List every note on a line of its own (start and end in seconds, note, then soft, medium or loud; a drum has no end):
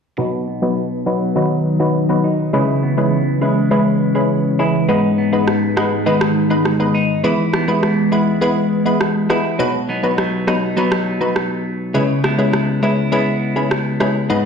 0.18 2.53 B2 medium
0.18 0.59 F#3 medium
0.18 2.51 F#3 medium
0.18 0.59 B3 medium
0.18 2.51 D#4 medium
0.18 0.59 D#4 medium
0.18 2.23 D#4 medium
0.18 9.55 B4 medium
0.18 0.59 B4 loud
0.48 2.82 B3 medium
0.62 0.81 F#3 medium
0.62 0.81 B3 medium
0.62 0.81 D#4 medium
0.62 0.81 B4 medium
1.06 1.25 F#3 medium
1.06 2.59 F#3 medium
1.06 1.25 B3 medium
1.06 1.25 D#4 medium
1.06 1.25 B4 medium
1.36 2.53 D#3 medium
1.36 1.76 F#3 medium
1.36 1.76 B3 medium
1.36 1.76 D#4 medium
1.36 1.77 B4 loud
1.80 1.99 F#3 medium
1.80 1.99 B3 medium
1.80 1.99 D#4 medium
1.80 1.99 B4 medium
2.09 2.28 F#3 medium
2.09 2.28 B3 medium
2.09 2.28 D#4 medium
2.09 2.28 B4 medium
2.24 2.53 D#4 medium
2.53 4.89 C#3 medium
2.53 4.86 E3 medium
2.53 2.94 G#3 loud
2.53 4.86 C#4 medium
2.53 2.94 C#4 medium
2.53 2.94 E4 medium
2.53 4.58 E4 medium
2.53 2.94 B4 loud
2.83 5.18 B3 medium
2.97 3.16 G#3 medium
2.97 3.16 C#4 medium
2.97 3.16 E4 medium
2.97 3.17 B4 medium
3.41 3.60 G#3 medium
3.41 3.71 G#3 medium
3.41 3.61 C#4 medium
3.41 3.61 E4 medium
3.41 3.61 B4 medium
3.71 4.11 G#3 medium
3.71 5.77 G#3 medium
3.71 4.12 C#4 medium
3.71 4.12 E4 medium
3.71 4.12 B4 loud
4.15 4.56 G#3 medium
4.15 4.56 C#4 medium
4.15 4.56 E4 medium
4.15 4.56 B4 medium
4.59 4.86 G#3 medium
4.59 4.86 C#4 medium
4.59 4.89 E4 medium
4.59 4.86 E4 medium
4.59 4.87 B4 medium
4.88 7.24 G#2 medium
4.88 5.29 G#3 medium
4.88 7.22 G#3 medium
4.88 5.29 B3 medium
4.88 7.22 D#4 medium
4.88 5.29 D#4 medium
4.88 6.93 D#4 medium
4.88 5.29 B4 loud
5.18 7.53 B3 medium
5.33 5.52 G#3 medium
5.33 5.52 B3 medium
5.33 5.52 D#4 medium
5.33 5.52 B4 medium
5.48 cross-stick medium
5.77 5.96 G#3 medium
5.77 8.12 G#3 medium
5.77 5.96 B3 medium
5.77 5.96 D#4 medium
5.77 5.96 B4 medium
5.77 cross-stick medium
6.06 7.24 D#3 medium
6.06 6.47 G#3 medium
6.06 6.47 B3 medium
6.06 6.47 D#4 medium
6.06 6.47 B4 loud
6.21 cross-stick loud
6.50 6.69 G#3 medium
6.50 6.69 B3 medium
6.50 6.69 D#4 medium
6.50 6.70 B4 medium
6.65 cross-stick medium
6.80 6.99 G#3 medium
6.80 6.99 B3 medium
6.80 6.99 D#4 medium
6.80 6.99 B4 medium
6.95 7.24 D#4 medium
7.24 9.59 E3 medium
7.24 7.64 G#3 medium
7.24 9.57 G#3 medium
7.24 7.64 B3 medium
7.24 9.57 E4 medium
7.24 7.65 E4 medium
7.24 9.29 E4 medium
7.24 7.65 B4 loud
7.53 9.89 B3 medium
7.53 cross-stick medium
7.68 7.87 G#3 medium
7.68 7.87 B3 medium
7.68 7.87 E4 medium
7.68 7.87 B4 medium
7.83 cross-stick medium
8.12 8.31 G#3 medium
8.12 8.40 G#3 medium
8.12 8.31 B3 medium
8.12 8.31 E4 medium
8.12 8.31 B4 medium
8.41 8.82 G#3 medium
8.41 9.65 G#3 medium
8.41 8.82 B3 medium
8.41 8.82 E4 medium
8.41 8.82 B4 loud
8.85 9.26 G#3 medium
8.85 9.26 B3 medium
8.85 9.26 E4 medium
8.85 9.26 B4 medium
9.01 cross-stick medium
9.30 9.57 G#3 medium
9.30 9.57 B3 medium
9.30 9.65 E4 medium
9.30 9.57 E4 medium
9.30 9.57 B4 medium
9.30 cross-stick medium
9.59 11.95 B2 medium
9.59 9.78 F#3 medium
9.59 9.78 B3 medium
9.59 9.78 D#4 medium
9.59 9.78 B4 loud
9.89 10.17 F#3 medium
9.89 10.77 B3 medium
9.89 10.46 D#4 medium
10.03 10.22 F#3 medium
10.03 10.22 B3 medium
10.03 10.22 D#4 medium
10.03 10.22 B4 medium
10.18 10.76 F#3 medium
10.18 cross-stick medium
10.47 10.66 F#3 medium
10.47 10.66 B3 medium
10.47 10.77 D#4 medium
10.47 10.66 D#4 medium
10.47 10.67 B4 medium
10.47 cross-stick medium
10.77 10.96 F#3 medium
10.77 12.00 F#3 medium
10.77 10.96 B3 medium
10.77 12.24 B3 medium
10.77 10.96 D#4 medium
10.77 12.01 D#4 medium
10.77 10.96 B4 loud
10.92 cross-stick loud
11.21 11.40 F#3 medium
11.21 11.40 B3 medium
11.21 11.40 D#4 medium
11.21 11.40 B4 medium
11.36 cross-stick medium
11.94 14.30 C#3 medium
11.94 12.13 G#3 medium
11.94 12.13 C#4 medium
11.94 12.13 E4 medium
11.94 12.14 B4 loud
12.24 12.53 G#3 medium
12.24 13.12 B3 medium
12.24 12.82 E4 medium
12.24 cross-stick medium
12.38 12.57 G#3 medium
12.38 12.58 C#4 medium
12.38 12.58 E4 medium
12.38 12.58 B4 medium
12.53 13.12 G#3 medium
12.53 cross-stick medium
12.82 13.02 G#3 medium
12.82 13.02 C#4 medium
12.82 13.12 E4 medium
12.82 13.02 E4 medium
12.82 13.02 B4 medium
13.12 13.31 G#3 medium
13.12 14.45 G#3 medium
13.12 14.45 B3 medium
13.12 13.31 C#4 medium
13.12 13.31 E4 medium
13.12 14.36 E4 medium
13.12 13.31 B4 loud
13.56 13.75 G#3 medium
13.56 13.75 C#4 medium
13.56 13.75 E4 medium
13.56 13.75 B4 medium
13.71 cross-stick medium
14.00 14.19 G#3 medium
14.00 14.19 C#4 medium
14.00 14.19 E4 medium
14.00 14.19 B4 medium
14.00 cross-stick medium
14.30 14.45 G#2 medium
14.30 14.45 G#3 loud
14.30 14.45 B3 medium
14.30 14.45 D#4 medium
14.30 14.45 B4 loud